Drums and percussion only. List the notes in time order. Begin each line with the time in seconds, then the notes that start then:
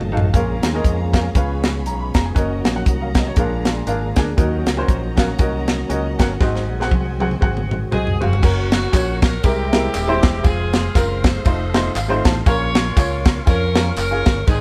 0.01 mid tom
0.17 floor tom
0.34 kick, closed hi-hat
0.63 snare, closed hi-hat
0.84 kick, closed hi-hat
1.13 kick, snare, closed hi-hat
1.35 kick, closed hi-hat
1.63 snare, closed hi-hat
1.86 closed hi-hat
2.14 kick, snare, closed hi-hat
2.36 kick, closed hi-hat
2.65 snare, closed hi-hat
2.86 kick, closed hi-hat
3.15 kick, snare, closed hi-hat
3.36 kick, closed hi-hat
3.65 snare, closed hi-hat
3.87 closed hi-hat
4.16 kick, snare, closed hi-hat
4.38 kick, closed hi-hat
4.66 snare, closed hi-hat
4.88 kick, closed hi-hat
5.17 kick, snare, closed hi-hat
5.39 kick, closed hi-hat
5.68 snare, closed hi-hat
5.90 closed hi-hat
6.19 kick, snare, closed hi-hat
6.41 kick, snare
6.56 snare
6.81 snare
6.91 kick, high tom
7.20 high tom
7.31 mid tom
7.42 kick
7.57 mid tom
7.71 mid tom
7.92 mid tom
8.07 floor tom
8.22 floor tom
8.33 floor tom
8.42 kick, crash, tambourine
8.72 snare, ride, tambourine
8.93 kick, clap, ride, tambourine
9.22 kick, snare, ride, tambourine
9.43 kick, ride, tambourine
9.73 snare, ride, tambourine
9.94 clap, ride, tambourine
10.23 kick, snare, ride, tambourine
10.44 kick, ride, tambourine
10.73 snare, ride, tambourine
10.95 kick, clap, ride, tambourine
11.24 kick, snare, ride, tambourine
11.45 kick, ride, tambourine
11.74 snare, ride, tambourine
11.96 clap, ride, tambourine
12.25 kick, snare, ride, tambourine
12.46 kick, ride, tambourine
12.75 snare, ride, tambourine
12.97 kick, clap, ride, tambourine
13.25 kick, snare, ride, tambourine
13.47 kick, ride, tambourine
13.75 snare, ride, tambourine
13.96 clap, ride, tambourine
14.26 kick, snare, ride, tambourine
14.47 kick, ride, tambourine